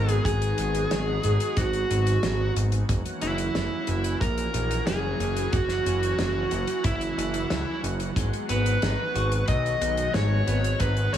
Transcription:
Already playing: G#1 D#3 F#3 G#3 B3 F#4 A#4
0.09 G#4, closed hi-hat
0.25 G#1 G#4, kick, closed hi-hat
0.42 closed hi-hat
0.58 G#1, closed hi-hat
0.75 closed hi-hat
0.91 G#1, snare, closed hi-hat
1.23 G#1, closed hi-hat
1.40 closed hi-hat
1.57 G#1 F#4, kick, closed hi-hat
1.73 closed hi-hat
1.90 G#1, closed hi-hat
2.07 closed hi-hat
2.23 G#1, snare, closed hi-hat
2.56 G#1, closed hi-hat
2.72 closed hi-hat
2.89 F#1 E3 A#3 C#4 F#5, kick, closed hi-hat
3.06 closed hi-hat
3.21 F#1 E4, closed hi-hat
3.38 closed hi-hat
3.55 F#1, snare, closed hi-hat
3.87 F#1, closed hi-hat
4.04 closed hi-hat
4.21 A#1 A#4, kick, closed hi-hat
4.38 closed hi-hat
4.54 A#1, closed hi-hat
4.71 closed hi-hat
4.87 F#1 G#4, snare, closed hi-hat
5.20 F#1, closed hi-hat
5.37 closed hi-hat
5.53 F#1 F#4, kick, closed hi-hat
5.69 snare, closed hi-hat
5.86 F#1, closed hi-hat
6.03 closed hi-hat
6.18 F#1, snare, closed hi-hat
6.51 F#1, closed hi-hat
6.67 closed hi-hat
6.84 F#1 E4, kick, closed hi-hat
7.01 closed hi-hat
7.17 F#1, closed hi-hat
7.34 closed hi-hat
7.50 C#2, snare, closed hi-hat
7.83 F#1, closed hi-hat
8.00 closed hi-hat
8.16 G#1 D#3 G#3 B3, kick, closed hi-hat
8.33 closed hi-hat
8.49 G#1 B3 B4, closed hi-hat
8.66 closed hi-hat
8.82 G#1 D#4, snare, closed hi-hat
9.15 G#1 F#4, closed hi-hat
9.32 closed hi-hat
9.48 B1 F#3 D#5, kick, closed hi-hat
9.66 closed hi-hat
9.81 B1, closed hi-hat
9.97 closed hi-hat
10.14 G#1 G#3 C#5, snare, closed hi-hat
10.47 G#1 B3, closed hi-hat
10.64 closed hi-hat
10.80 G#1 D#4 B4, kick, closed hi-hat
10.97 closed hi-hat
11.13 G#1 F#4 D#5, closed hi-hat

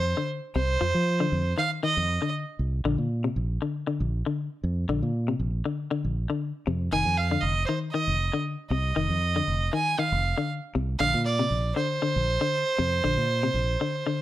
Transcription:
Already playing: F2 C5
0.17 D3
0.55 C2 C3 C5
0.81 F2 F3
0.95 F3
1.20 D3
1.32 F2
1.58 D#3 F5
1.83 D#3 D#5
1.97 F2
2.22 D3
2.59 C2
2.85 A#1 D3
2.98 A#2
3.24 C3
3.36 A#1
3.62 D3
3.87 D3
4.00 A#1
4.26 D3
4.64 F2
4.89 A#1 D3
5.02 A#2
5.28 C3
5.40 A#1
5.65 D3
5.91 D3
6.05 A#1
6.30 D3
6.67 F2 C3
6.92 F1 D#3 G#5
7.05 F2
7.17 F5
7.31 D3
7.41 F1 D#5
7.66 D#3 C5
7.91 D#3 D#5
8.07 F1
8.33 D3
8.70 C2 C3 D#5
8.96 F1 D#3
9.09 F2
9.36 D3
9.48 F1
9.73 D#3 G#5
9.99 D#3 F5
10.12 F1
10.38 D3
10.75 C2 C3
10.99 A#1 D3 F5
11.14 A#2
11.25 D5
11.39 C3
11.51 A#1
11.76 D3 C5
12.02 D3
12.16 A#1
12.41 D3
12.78 F2 C3
13.04 A#1 D3
13.17 A#2
13.43 C3
13.54 A#1
13.81 D3
14.07 D3

